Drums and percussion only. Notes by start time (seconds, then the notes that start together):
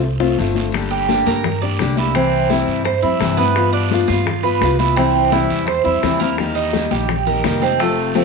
0.03 high conga, long guiro
0.20 low bongo, high conga
0.38 high conga, short guiro
0.55 low bongo, high conga, short guiro
0.74 high bongo, high conga, long guiro
0.91 high conga
1.09 high bongo, high conga, short guiro
1.27 high conga, short guiro
1.44 high bongo, high conga, low conga, long guiro
1.62 high conga
1.79 high bongo, low bongo, high conga, short guiro
1.97 high conga, short guiro
2.15 high bongo, high conga, long guiro
2.32 high conga
2.50 high bongo, high conga, short guiro
2.68 high bongo, short guiro
2.85 high bongo, high conga, long guiro
3.03 high bongo, high conga
3.21 high bongo, low bongo, high conga, short guiro
3.38 high bongo, high conga, short guiro
3.56 high bongo, long guiro
3.73 high conga
3.91 high bongo, high conga, short guiro
4.08 high conga, short guiro
4.26 high bongo, high conga, low conga, long guiro
4.44 high conga
4.61 high bongo, low bongo, high conga, short guiro
4.79 high conga, short guiro
4.96 high bongo, high conga, long guiro
5.15 high conga
5.32 high bongo, high conga, short guiro
5.49 high bongo, high conga, short guiro
5.67 high bongo, high conga, long guiro
5.85 high bongo, high conga
6.03 high bongo, low bongo, high conga, short guiro
6.20 high bongo, high conga, short guiro
6.38 high bongo, high conga, long guiro
6.56 high conga
6.73 high bongo, high conga, short guiro
6.91 high conga, short guiro
7.09 high bongo, high conga, low conga, long guiro
7.27 high conga, low conga
7.44 high bongo, low bongo, high conga, short guiro
7.62 high conga, short guiro
7.80 high bongo, high conga, long guiro
7.98 high conga
8.15 high bongo, high conga, short guiro